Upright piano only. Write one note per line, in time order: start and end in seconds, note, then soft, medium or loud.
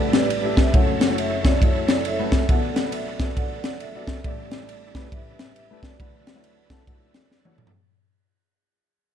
0.00 0.70 A1 medium
0.00 0.70 A2 medium
0.00 0.25 A3 medium
0.00 0.25 D4 medium
0.00 0.25 E4 medium
0.00 0.25 G4 medium
0.00 0.25 B4 medium
0.44 0.66 A3 medium
0.44 0.66 D4 medium
0.44 0.66 E4 medium
0.44 0.66 G4 medium
0.44 0.66 A4 medium
0.74 2.45 F#1 medium
0.74 2.45 F#2 medium
0.74 1.01 A3 medium
0.74 1.01 C#4 medium
0.74 1.01 E4 medium
0.74 1.01 F#4 medium
0.74 1.01 C#5 medium
1.09 1.31 A3 medium
1.09 1.31 C#4 medium
1.09 1.31 E4 medium
1.09 1.31 F#4 medium
1.09 1.31 C#5 medium
1.45 1.56 A3 medium
1.45 1.56 C#4 medium
1.45 1.56 E4 medium
1.45 1.56 F#4 medium
1.45 1.56 C#5 medium
1.62 2.00 A3 medium
1.62 2.00 C#4 medium
1.62 2.00 E4 medium
1.62 2.00 F#4 medium
1.62 1.68 D#5 medium
1.67 2.02 E5 medium
2.19 2.41 A3 medium
2.19 2.41 C#4 medium
2.19 2.41 E4 medium
2.19 2.41 F#4 medium
2.19 2.41 B4 medium
2.49 4.20 B1 medium
2.49 4.21 B2 medium
2.49 2.76 B3 medium
2.49 2.77 D4 medium
2.49 2.76 F#4 medium
2.49 2.76 A4 medium
2.49 2.77 D5 medium
2.86 3.07 B3 medium
2.86 3.07 D4 medium
2.86 3.07 F#4 medium
2.86 3.07 A4 medium
2.86 3.07 B4 medium
3.20 3.31 B3 medium
3.20 3.31 D4 medium
3.20 3.31 F#4 medium
3.20 3.32 A4 medium
3.20 3.31 C#5 medium
3.37 3.75 B3 medium
3.37 3.75 D4 medium
3.37 3.75 F#4 medium
3.37 3.75 A4 medium
3.37 3.75 D5 medium
3.95 4.16 B3 medium
3.95 4.16 D4 medium
3.95 4.16 F#4 medium
3.95 4.17 A4 medium
3.95 4.17 D5 medium
4.25 5.09 A1 medium
4.25 5.09 A2 medium
4.25 4.52 A3 medium
4.25 4.52 D4 medium
4.25 4.52 E4 medium
4.25 4.52 G4 medium
4.25 4.52 D5 medium
4.61 4.82 A3 medium
4.61 4.82 D4 medium
4.61 4.82 E4 medium
4.61 4.82 G4 medium
4.61 4.82 D5 medium
4.97 5.07 A3 medium
4.97 5.07 D4 medium
4.97 5.07 E4 medium
4.97 5.07 G4 medium
4.97 5.07 B4 medium
5.13 5.96 A1 medium
5.13 5.96 A2 medium
5.13 5.51 A3 medium
5.13 5.51 D4 medium
5.13 5.51 G4 medium
5.70 5.92 A3 medium
5.70 5.92 D4 medium
5.70 5.92 E4 medium
5.70 5.92 G4 medium
5.70 5.92 B4 medium
6.00 7.71 D2 medium
6.00 7.71 D3 medium
6.00 6.27 A3 medium
6.00 6.27 D4 medium
6.00 6.27 E4 medium
6.00 6.27 F#4 medium
6.00 6.27 B4 medium
6.35 6.57 A3 medium
6.35 6.57 D4 medium
6.35 6.57 E4 medium
6.35 6.57 F#4 medium
6.35 6.57 C#5 medium
6.71 6.82 A3 medium
6.71 6.82 D4 medium
6.71 6.82 E4 medium
6.71 6.82 F#4 medium
6.71 6.82 A4 loud
6.88 7.26 A3 medium
6.88 7.26 D4 medium
6.88 7.26 E4 medium
6.88 7.26 F#4 medium
6.88 7.26 A4 medium
7.45 7.67 A3 medium
7.45 7.67 D4 medium
7.45 7.67 E4 medium
7.45 7.67 F#4 medium
7.45 7.67 C#5 loud